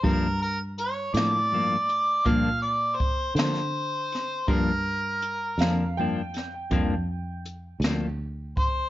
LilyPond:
<<
  \new Staff \with { instrumentName = "Upright piano" } { \time 12/8 \key g \minor \tempo 4. = 54 r1. | r4. f''8 g''2 r2 | }
  \new Staff \with { instrumentName = "Harmonica" } { \time 12/8 \key g \minor bes'8 bes'8 cis''8 d''4. f''8 d''8 c''8 c''4. | bes'2 r2. r8 c''8 | }
  \new Staff \with { instrumentName = "Clean electric guitar" } { \time 12/8 \key g \minor <g, f bes d'>8 r4 <f bes d'>8 <g, f bes d'>8 r8 <g, f bes d'>8 r4 <f bes d'>8 r4 | <g, f bes d'>8 r4 <f bes d'>8 <g, f bes d'>8 r8 <g, f bes d'>8 r4 <f bes d'>8 r4 | }
  \new Staff \with { instrumentName = "Fingered electric bass" } { \clef bass \time 12/8 \key g \minor g,4. a,4. bes,4. d4. | g,4. f,4. f,4. d,4. | }
  \new DrumStaff \with { instrumentName = "Drums" } \drummode { \time 12/8 <hh bd>4 hh8 <hh sn>4 hh8 <hh bd>4 <hh bd>8 <hh sn>4 <hh sn>8 | <hh bd>4 hh8 <hh sn>4 <hh sn>8 <hh bd>4 hh8 <hh sn>4 <hh bd>8 | }
>>